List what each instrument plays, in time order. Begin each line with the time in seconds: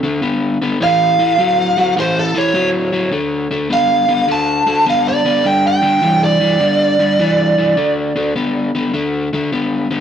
0.03 overdriven electric guitar D3 A3
0.22 overdriven electric guitar D3 B3
0.62 overdriven electric guitar D3 B3
0.80 overdriven electric guitar A2 E3, lead electric guitar F5
1.19 overdriven electric guitar A2 E3
1.39 overdriven electric guitar A2 F#3
1.77 overdriven electric guitar A2 F#3
1.97 overdriven electric guitar A2 E3, lead electric guitar C5
2.19 lead electric guitar A4
2.34 overdriven electric guitar A2 E3, lead electric guitar C#5
2.54 overdriven electric guitar A2 F#3
2.92 overdriven electric guitar A2 F#3
3.12 overdriven electric guitar D3 A3
3.51 overdriven electric guitar D3 A3
3.70 overdriven electric guitar D3 B3, lead electric guitar F5
4.08 overdriven electric guitar D3 B3
4.28 overdriven electric guitar D3 A3, lead electric guitar A5
4.67 overdriven electric guitar D3 A3
4.86 overdriven electric guitar D3 B3, lead electric guitar F5
5.08 lead electric guitar D5
5.25 overdriven electric guitar D3 B3
5.44 overdriven electric guitar G2 D3, lead electric guitar G5
5.67 lead electric guitar G5
5.82 overdriven electric guitar G2 D3
6.02 overdriven electric guitar G2 E3
6.24 lead electric guitar D5
6.40 overdriven electric guitar G2 E3
6.60 overdriven electric guitar G2 D3
6.99 overdriven electric guitar G2 D3
7.19 overdriven electric guitar G2 E3
7.58 overdriven electric guitar G2 E3
7.77 overdriven electric guitar D3 A3
8.16 overdriven electric guitar D3 A3
8.36 overdriven electric guitar D3 B3
8.75 overdriven electric guitar D3 B3
8.93 overdriven electric guitar D3 A3
9.33 overdriven electric guitar D3 A3
9.52 overdriven electric guitar D3 B3
9.91 overdriven electric guitar D3 B3